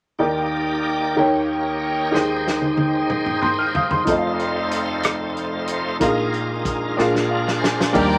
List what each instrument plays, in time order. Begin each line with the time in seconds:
0.19 upright piano D#2 D#3 D#4 G4 A#4 D5 G5, tonewheel organ A#3 D#4 G4 D5
1.16 upright piano D#2 D#3 D#4 G4 A#4 C#5 G5, tonewheel organ A#3 D#4 G4 C#5
2.11 upright piano D#2 D#3 D#4 G4 G#4, tonewheel organ D#3 G#3 D#4 C5 G5, snare
2.16 upright piano C5 G5
2.47 snare
2.62 high tom
2.77 high tom
3.10 mid tom
3.26 mid tom
3.42 upright piano C6 G6, mid tom
3.59 upright piano F6
3.75 upright piano F5 D#6, floor tom
3.91 upright piano C6, floor tom
4.05 upright piano F1 F2 D#4 F4 A4, tonewheel organ A3 D#4 F4 C5, kick, closed hi-hat
4.09 upright piano C5 D#5
4.17 upright piano F5
4.39 closed hi-hat
4.71 closed hi-hat
5.03 cross-stick, closed hi-hat
5.37 closed hi-hat
5.67 closed hi-hat
6.00 upright piano A#1 A#2 D#4 F4 G#4 A#4 F5, tonewheel organ G#3 D#4 F4 A#4, kick, closed hi-hat
6.34 closed hi-hat
6.65 kick, closed hi-hat
6.97 upright piano A#1 A#2 D4 F4 G#4 A#4 F5, tonewheel organ G#3 D4 F4 A#4, snare
7.15 snare
7.29 upright piano F5
7.48 snare
7.59 tonewheel organ C5, upright piano G#5
7.64 snare
7.80 snare
7.92 fingered electric bass D#2, tonewheel organ F3 G3 A#3 G4 A#4 D5, upright piano G3 A#3 D4 D#4 G4 D5, string section G5 A#5 D6, kick, crash